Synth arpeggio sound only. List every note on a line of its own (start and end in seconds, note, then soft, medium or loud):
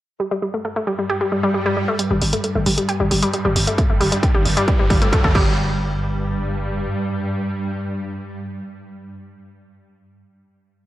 0.20 0.27 G3 medium
0.31 0.34 G3 loud
0.42 0.45 G3 medium
0.54 0.58 A3 medium
0.65 0.69 A3 medium
0.76 0.79 A3 medium
0.87 0.92 G3 loud
0.99 1.05 G3 medium
1.10 1.14 G4 medium
1.21 1.25 G3 loud
1.32 1.39 G3 medium
1.43 1.50 G3 loud
1.54 1.61 G3 medium
1.66 1.68 G3 loud
1.77 1.79 G3 medium
1.88 1.93 A3 medium
1.99 2.06 G3 medium
2.11 2.13 G3 loud
2.21 2.24 G3 medium
2.33 2.37 A3 medium
2.44 2.48 A3 medium
2.55 2.58 A3 medium
2.66 2.71 G3 loud
2.78 2.84 G3 medium
2.89 2.93 G4 medium
3.00 3.05 G3 loud
3.11 3.18 G3 medium
3.23 3.29 G3 loud
3.34 3.40 G3 medium
3.45 3.48 G3 loud
3.56 3.59 G3 medium
3.67 3.72 A3 medium
3.78 3.83 A3 medium
3.90 3.92 A3 medium
4.00 4.05 G3 loud
4.12 4.19 G3 medium
4.23 4.28 G4 medium
4.34 4.39 G3 loud
4.45 4.52 G3 medium
4.57 4.63 G3 loud
4.68 4.75 G3 medium
4.79 4.82 G3 loud
4.90 4.93 G3 medium
5.02 5.06 A3 medium
5.13 5.17 A3 medium
5.24 5.27 A3 medium
5.35 5.77 G3 loud